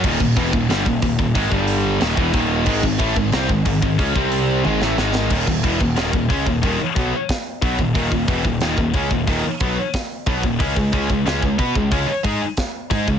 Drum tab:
CC |x-------|--------|x-------|--------|
HH |--o-o-o-|o-o-o-o-|--o-o-o-|o-o-----|
SD |----o---|----o---|----o---|-----ooo|
T1 |--------|--------|--------|----o---|
BD |oooo-ooo|oo---oo-|oooo-ooo|oo------|

CC |x-------|--------|--------|--------|
HH |--o-o-o-|o-o-o-o-|o-o-o-o-|o-o-o-o-|
SD |----o---|----o---|----o---|----o---|
T1 |--------|--------|--------|--------|
BD |oooo-ooo|o-o-o-oo|oooo-ooo|o-o-o-oo|

CC |--------|--------|
HH |o-o-o-o-|o-o-o-o-|
SD |----o---|----o---|
T1 |--------|--------|
BD |oooo-ooo|o-o-o-oo|